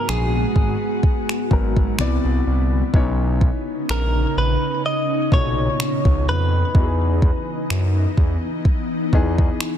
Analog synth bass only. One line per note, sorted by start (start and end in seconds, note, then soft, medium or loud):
0.08 0.44 A#1 loud
0.56 0.75 G#1 medium
1.51 1.87 G#1 loud
1.99 2.18 C2 loud
2.24 2.41 C2 medium
2.47 2.83 C2 medium
2.94 3.50 B1 loud
3.89 4.25 A#1 loud
4.37 4.56 A#1 loud
5.32 5.68 B1 medium
6.05 6.29 C#2 medium
6.27 6.64 F2 medium
6.75 7.31 E2 loud
7.70 8.06 F#2 loud
8.18 8.37 E2 medium
9.13 9.49 E2 loud